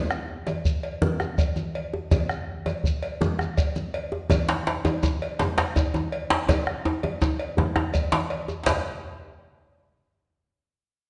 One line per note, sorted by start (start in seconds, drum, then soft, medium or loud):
0.10 bombo rim medium
0.10 shekere soft
0.47 cowbell soft
0.47 djembe slap medium
0.47 djembe tone medium
0.47 high conga medium
0.47 shekere soft
0.65 bombo low loud
0.65 shekere medium
0.83 cowbell soft
1.02 high conga medium
1.02 djembe bass medium
1.02 low conga medium
1.02 shekere soft
1.20 bombo rim medium
1.20 djembe slap medium
1.20 djembe tone medium
1.20 high conga soft
1.20 shekere soft
1.38 bombo rim soft
1.38 bombo low loud
1.38 cowbell soft
1.38 shekere medium
1.56 djembe slap soft
1.56 high conga medium
1.56 shekere soft
1.75 cowbell medium
1.94 djembe slap medium
1.94 djembe tone medium
2.11 bombo low loud
2.11 cowbell medium
2.11 high conga medium
2.11 djembe bass medium
2.11 low conga medium
2.11 shekere medium
2.29 bombo rim medium
2.29 shekere soft
2.66 cowbell medium
2.66 djembe slap medium
2.66 djembe tone medium
2.66 high conga medium
2.66 shekere soft
2.84 bombo low loud
2.84 shekere medium
3.03 cowbell medium
3.21 high conga medium
3.21 djembe bass medium
3.21 low conga medium
3.21 shekere soft
3.39 bombo rim medium
3.39 djembe slap medium
3.39 djembe tone medium
3.39 shekere soft
3.57 bombo rim soft
3.57 bombo low loud
3.57 cowbell medium
3.57 shekere medium
3.76 djembe slap soft
3.76 high conga medium
3.76 shekere soft
3.94 cowbell medium
4.12 djembe slap medium
4.12 djembe tone medium
4.30 bombo low loud
4.30 cowbell medium
4.30 high conga medium
4.30 low conga medium
4.30 djembe bass medium
4.30 shekere medium
4.48 bombo rim medium
4.48 djembe slap loud
4.48 shekere soft
4.67 djembe slap medium
4.85 cowbell medium
4.85 djembe slap medium
4.85 djembe tone medium
4.85 high conga medium
4.85 shekere soft
5.03 bombo low loud
5.03 djembe tone medium
5.03 shekere medium
5.22 cowbell medium
5.39 djembe slap medium
5.39 high conga medium
5.39 low conga medium
5.39 djembe bass medium
5.39 shekere soft
5.58 bombo rim medium
5.58 djembe slap medium
5.58 djembe tone medium
5.58 high conga soft
5.58 shekere soft
5.76 bombo low loud
5.76 cowbell medium
5.76 djembe tone medium
5.76 shekere medium
5.94 djembe slap soft
5.94 high conga medium
5.94 djembe tone medium
5.94 shekere soft
6.12 cowbell medium
6.30 djembe slap loud
6.30 djembe slap medium
6.30 djembe tone medium
6.48 bombo low loud
6.48 cowbell medium
6.48 djembe tone loud
6.48 high conga medium
6.48 djembe bass medium
6.48 low conga medium
6.48 shekere medium
6.67 bombo rim medium
6.67 djembe slap soft
6.85 djembe slap soft
6.85 djembe tone loud
7.03 bombo rim soft
7.03 cowbell medium
7.03 djembe slap medium
7.03 high conga medium
7.03 djembe tone medium
7.22 bombo rim soft
7.22 bombo low loud
7.22 djembe tone loud
7.22 shekere medium
7.39 cowbell medium
7.57 bombo rim soft
7.57 djembe tone loud
7.57 high conga medium
7.57 djembe bass medium
7.57 low conga medium
7.76 bombo rim medium
7.76 djembe slap medium
7.76 djembe tone loud
7.76 high conga soft
7.76 djembe tone medium
7.94 bombo rim soft
7.94 bombo low loud
7.94 cowbell medium
7.94 djembe slap soft
7.94 shekere medium
8.12 bombo rim soft
8.12 djembe slap soft
8.12 djembe slap loud
8.12 high conga medium
8.12 shekere soft
8.30 bombo rim soft
8.30 cowbell medium
8.48 djembe slap medium
8.48 djembe tone medium
8.48 shekere soft
8.66 bombo low medium
8.66 cowbell medium
8.66 djembe slap loud
8.66 low conga medium
8.66 djembe bass medium
8.66 shekere medium